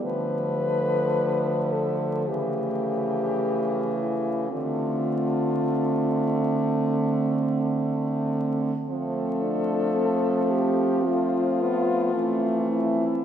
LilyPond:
<<
  \new Staff \with { instrumentName = "French horn" } { \time 4/4 \key d \dorian \tempo 4 = 54 b'4. a'8 g'4. e'8 | f'2~ f'8 r4. | \key f \lydian a'4. g'8 f'4. e'8 | }
  \new Staff \with { instrumentName = "French horn" } { \time 4/4 \key d \dorian a2 a2 | c'1 | \key f \lydian c'8 d'8 c'4 a4 c'4 | }
  \new Staff \with { instrumentName = "French horn" } { \time 4/4 \key d \dorian f2 e2 | a1 | \key f \lydian a2 c'8 b8 a4 | }
  \new Staff \with { instrumentName = "French horn" } { \clef bass \time 4/4 \key d \dorian d2 cis2 | d1 | \key f \lydian f2. e4 | }
>>